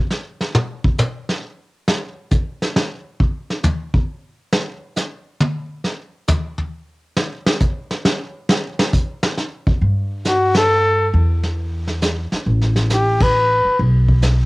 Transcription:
0.11 snare soft
0.41 snare soft
0.55 mid tom loud
0.85 kick medium
0.99 hi-hat pedal medium
0.99 mid tom medium
1.29 snare soft
1.88 snare loud
2.31 kick medium
2.31 hi-hat pedal medium
2.62 snare soft
2.76 snare loud
3.20 kick medium
3.50 snare soft
3.63 floor tom medium
3.63 hi-hat pedal medium
3.94 kick medium
4.52 snare medium
4.96 snare medium
4.96 hi-hat pedal medium
5.40 high tom loud
5.84 snare soft
6.28 floor tom loud
6.28 hi-hat pedal medium
6.58 floor tom soft
7.17 snare loud
7.46 snare loud
7.60 kick medium
7.60 hi-hat pedal medium
7.91 snare soft
8.05 snare medium
8.49 snare loud
8.79 snare loud
8.93 kick medium
8.93 hi-hat pedal medium
9.23 snare loud
9.38 snare soft
9.67 kick medium
9.81 11.10 G2 medium
9.81 brush sweep soft
10.25 10.55 F#4 medium
10.25 snare medium
10.25 hi-hat pedal medium
10.54 11.11 A4 medium
10.54 snare medium
10.54 ride medium
11.14 12.28 E2 medium
11.14 brush sweep soft
11.43 snare soft
11.88 snare soft
12.02 snare medium
12.02 hi-hat pedal medium
12.32 muted upright bass stroke soft
12.32 snare soft
12.46 13.60 A1 medium
12.46 brush sweep soft
12.61 snare soft
12.76 snare soft
12.90 13.24 G4 medium
12.90 snare medium
12.90 hi-hat pedal medium
13.20 13.80 B4 medium
13.20 kick medium
13.20 ride medium
13.65 muted upright bass stroke soft
13.79 14.46 B1 medium
13.79 brush sweep soft
14.08 kick soft
14.22 snare medium
14.22 hi-hat pedal soft

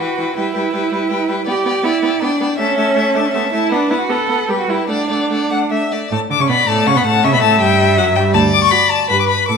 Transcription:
0.00 0.36 F#4 medium
0.00 0.18 B4 soft
0.00 0.17 G5 soft
0.17 0.25 E3 soft
0.17 0.35 B4 soft
0.17 0.36 G5 soft
0.36 0.44 G3 soft
0.36 1.27 E4 medium
0.36 0.54 B4 soft
0.36 0.54 G5 soft
0.54 0.62 G3 soft
0.54 0.73 B4 soft
0.54 0.72 G5 soft
0.73 0.81 G3 soft
0.73 0.91 B4 soft
0.73 0.91 G5 soft
0.92 0.99 G3 soft
0.92 1.10 B4 soft
0.92 1.09 G5 soft
1.09 1.18 G3 soft
1.09 1.28 B4 soft
1.09 1.27 G5 soft
1.28 1.36 G3 soft
1.28 1.46 B4 soft
1.28 1.46 G5 soft
1.46 1.54 B3 soft
1.46 1.86 G4 medium
1.46 1.65 D5 soft
1.46 1.64 G5 soft
1.65 1.73 B3 soft
1.65 1.84 D5 soft
1.65 1.83 G5 soft
1.83 1.91 B3 medium
1.83 2.23 E4 medium
1.83 2.03 D5 soft
1.83 2.01 G5 soft
2.02 2.10 B3 soft
2.02 2.21 D5 soft
2.02 2.21 G5 soft
2.21 2.29 B3 soft
2.21 2.58 D4 medium
2.21 2.40 D5 soft
2.21 2.40 G5 soft
2.40 2.48 B3 soft
2.40 2.58 D5 soft
2.40 2.59 G5 soft
2.58 2.66 A3 soft
2.58 3.18 C#4 medium
2.58 2.77 E5 medium
2.58 2.77 A5 soft
2.77 2.85 A3 medium
2.77 2.96 E5 soft
2.77 2.96 A5 soft
2.95 3.03 A3 medium
2.95 3.14 E5 soft
2.95 3.15 A5 soft
3.15 3.22 A3 medium
3.15 3.27 D4 medium
3.15 3.33 E5 soft
3.15 3.33 A5 soft
3.26 3.36 C#4 medium
3.33 3.41 A3 soft
3.33 3.45 B3 medium
3.33 3.52 E5 soft
3.33 3.52 A5 soft
3.44 3.52 C#4 medium
3.52 3.60 A3 medium
3.52 3.73 E4 medium
3.52 3.71 E5 soft
3.52 3.71 A5 soft
3.71 3.78 B3 soft
3.71 3.92 D4 medium
3.71 3.89 B4 soft
3.71 3.90 F#5 soft
3.89 3.98 B3 medium
3.89 4.00 E4 medium
3.89 4.09 B4 soft
3.89 4.08 F#5 soft
4.01 4.11 F#4 medium
4.09 4.17 B3 soft
4.09 4.51 A4 medium
4.09 4.28 B4 soft
4.09 4.28 F#5 soft
4.28 4.36 B3 soft
4.28 4.48 B4 soft
4.28 4.48 F#5 soft
4.48 4.56 G3 soft
4.48 4.59 G4 medium
4.48 4.69 B4 soft
4.48 4.68 G5 soft
4.60 4.71 F#4 medium
4.67 4.75 G3 soft
4.67 4.89 E4 medium
4.67 4.89 B4 soft
4.67 4.88 G5 soft
4.88 4.96 A3 soft
4.88 5.69 D4 medium
4.88 5.09 D5 soft
4.88 5.09 F#5 soft
5.09 5.17 A3 soft
5.09 5.30 D5 soft
5.09 5.30 F#5 soft
5.30 5.38 A3 soft
5.30 5.49 D5 soft
5.30 5.50 F#5 soft
5.50 5.58 A3 soft
5.50 5.71 F#5 soft
5.50 5.59 F#5 soft
5.71 5.79 A3 soft
5.71 5.93 E5 soft
5.71 5.90 E5 soft
5.91 5.99 A3 soft
5.91 6.11 D5 soft
5.91 6.11 E5 soft
6.11 6.19 A2 medium
6.11 6.19 A3 medium
6.11 6.19 A5 medium
6.30 6.34 D3 medium
6.30 6.41 D4 medium
6.30 6.43 D6 medium
6.39 6.43 C#3 medium
6.39 6.51 C#4 medium
6.39 6.49 C#6 medium
6.49 6.57 B2 medium
6.49 6.67 B3 medium
6.49 6.88 D5 medium
6.49 6.70 B5 medium
6.68 6.86 A2 medium
6.68 6.88 A3 medium
6.68 6.88 A5 medium
6.86 6.90 C#3 medium
6.86 6.97 C#4 medium
6.86 7.25 F#5 medium
6.86 6.98 C#6 medium
6.95 7.00 B2 soft
6.95 7.06 B3 soft
6.95 7.05 B5 medium
7.05 7.25 A2 medium
7.05 7.22 A3 medium
7.05 7.25 A5 medium
7.23 7.35 C#3 medium
7.23 7.32 C#4 medium
7.23 8.35 E5 medium
7.23 7.33 C#6 medium
7.33 7.44 B2 medium
7.33 7.41 B3 medium
7.33 7.42 B5 medium
7.41 7.60 A2 medium
7.41 7.59 A3 medium
7.41 7.60 A5 medium
7.60 7.99 G2 medium
7.60 7.99 G3 medium
7.60 7.97 G5 medium
7.97 8.17 F#2 medium
7.97 8.17 F#3 medium
7.97 8.05 F#5 medium
8.15 8.34 G2 medium
8.15 8.34 G3 medium
8.15 8.23 G5 medium
8.34 8.64 D2 medium
8.34 9.09 D5 medium
8.34 8.41 A5 medium
8.53 8.62 D6 medium
8.63 8.72 C#6 medium
8.71 9.00 F#4 medium
8.71 8.92 B5 medium
8.90 9.08 A5 medium
9.09 9.41 G2 medium
9.09 9.39 G4 medium
9.09 9.49 B4 medium
9.09 9.19 B5 medium
9.20 9.24 D6 medium
9.28 9.47 B5 medium
9.48 9.57 A2 medium
9.48 9.57 A4 soft
9.48 9.57 D6 medium

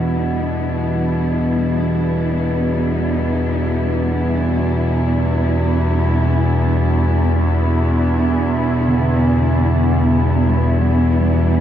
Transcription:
0.00 11.60 E2 medium
0.00 11.60 B2 medium
0.00 11.60 G3 medium
0.00 11.60 B3 medium
0.00 11.60 D4 medium
0.00 11.60 E4 medium
8.87 10.16 D3 medium
8.87 9.92 B3 medium
9.92 11.60 B3 medium
10.49 11.60 G3 medium

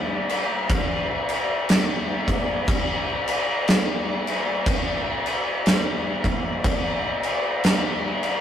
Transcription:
0.29 crash medium
0.69 kick loud
0.69 crash medium
1.29 crash medium
1.69 snare loud
1.69 crash medium
2.28 kick medium
2.28 crash medium
2.68 kick loud
2.68 crash medium
3.28 crash medium
3.68 snare loud
3.68 crash medium
4.27 crash medium
4.66 kick loud
4.66 crash medium
5.26 crash medium
5.66 snare loud
5.66 crash medium
6.24 kick medium
6.24 crash medium
6.64 kick loud
6.64 crash medium
7.23 crash medium
7.64 snare loud
7.64 crash medium
8.23 crash medium

